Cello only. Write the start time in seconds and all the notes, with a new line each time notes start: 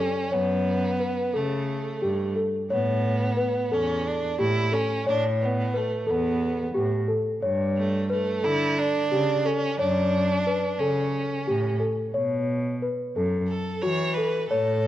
0.33 F#2
1.34 C#3
2.02 G2
2.70 A2
3.71 E2
4.39 A2
5.06 A2
6.08 E2
6.75 A2
7.42 G2
8.44 D3
9.12 C#3
9.79 F#2
10.80 C#3
11.48 A2
12.15 B2
13.16 F#2
13.84 E3
14.51 A2